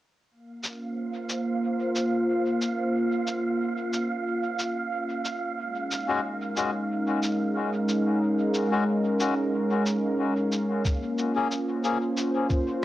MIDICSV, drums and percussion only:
0, 0, Header, 1, 2, 480
1, 0, Start_track
1, 0, Key_signature, -5, "minor"
1, 0, Tempo, 659341
1, 221, Time_signature, 4, 2, 24, 8
1, 9351, End_track
2, 0, Start_track
2, 0, Title_t, "Drums"
2, 462, Note_on_c, 9, 69, 45
2, 535, Note_off_c, 9, 69, 0
2, 942, Note_on_c, 9, 69, 47
2, 1015, Note_off_c, 9, 69, 0
2, 1422, Note_on_c, 9, 69, 45
2, 1495, Note_off_c, 9, 69, 0
2, 1902, Note_on_c, 9, 69, 47
2, 1975, Note_off_c, 9, 69, 0
2, 2381, Note_on_c, 9, 69, 50
2, 2454, Note_off_c, 9, 69, 0
2, 2862, Note_on_c, 9, 69, 45
2, 2934, Note_off_c, 9, 69, 0
2, 3341, Note_on_c, 9, 69, 49
2, 3414, Note_off_c, 9, 69, 0
2, 3821, Note_on_c, 9, 69, 48
2, 3894, Note_off_c, 9, 69, 0
2, 4302, Note_on_c, 9, 69, 47
2, 4375, Note_off_c, 9, 69, 0
2, 4780, Note_on_c, 9, 69, 46
2, 4853, Note_off_c, 9, 69, 0
2, 5260, Note_on_c, 9, 69, 48
2, 5332, Note_off_c, 9, 69, 0
2, 5740, Note_on_c, 9, 69, 49
2, 5812, Note_off_c, 9, 69, 0
2, 6218, Note_on_c, 9, 69, 47
2, 6291, Note_off_c, 9, 69, 0
2, 6699, Note_on_c, 9, 69, 48
2, 6771, Note_off_c, 9, 69, 0
2, 7178, Note_on_c, 9, 69, 49
2, 7251, Note_off_c, 9, 69, 0
2, 7658, Note_on_c, 9, 69, 48
2, 7731, Note_off_c, 9, 69, 0
2, 7899, Note_on_c, 9, 69, 49
2, 7900, Note_on_c, 9, 36, 105
2, 7972, Note_off_c, 9, 69, 0
2, 7973, Note_off_c, 9, 36, 0
2, 8139, Note_on_c, 9, 69, 29
2, 8212, Note_off_c, 9, 69, 0
2, 8380, Note_on_c, 9, 69, 48
2, 8453, Note_off_c, 9, 69, 0
2, 8620, Note_on_c, 9, 69, 28
2, 8693, Note_off_c, 9, 69, 0
2, 8860, Note_on_c, 9, 69, 52
2, 8932, Note_off_c, 9, 69, 0
2, 9099, Note_on_c, 9, 69, 27
2, 9101, Note_on_c, 9, 36, 94
2, 9172, Note_off_c, 9, 69, 0
2, 9174, Note_off_c, 9, 36, 0
2, 9351, End_track
0, 0, End_of_file